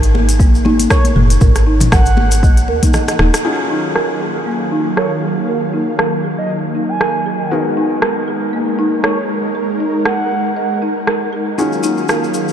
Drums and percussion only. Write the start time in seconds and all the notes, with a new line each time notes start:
0.03 closed hi-hat, cabasa
0.15 muted conga, high conga
0.29 closed hi-hat, cabasa
0.40 kick, cabasa
0.55 cabasa
0.65 muted conga, high conga
0.80 closed hi-hat, high conga, cabasa
0.90 kick, cross-stick, cabasa
1.04 closed hi-hat, muted conga, high conga, cabasa
1.16 mid tom, high conga
1.30 closed hi-hat, cabasa
1.41 kick, mid tom, muted conga, cabasa
1.55 cross-stick, closed hi-hat, cabasa
1.81 closed hi-hat, mid tom, muted conga, low conga, cabasa
1.92 kick, cross-stick, low conga, cabasa
2.06 closed hi-hat, cabasa
2.17 muted conga, high conga
2.31 closed hi-hat, cabasa
2.43 kick, high conga, cabasa
2.57 closed hi-hat, cabasa
2.68 muted conga
2.83 kick, closed hi-hat, high conga, cabasa
2.93 cross-stick, low conga, cabasa
3.08 cross-stick, closed hi-hat, muted conga, cabasa
3.19 cross-stick, high conga
3.34 cross-stick, closed hi-hat, cabasa
3.96 cross-stick
4.97 cross-stick
5.99 cross-stick
7.01 cross-stick
8.02 cross-stick
9.04 cross-stick
10.05 cross-stick
11.07 cross-stick
11.59 cabasa
11.73 cabasa
11.83 cabasa
11.97 cabasa
12.09 cross-stick, cabasa
12.24 cabasa
12.34 cabasa
12.48 cabasa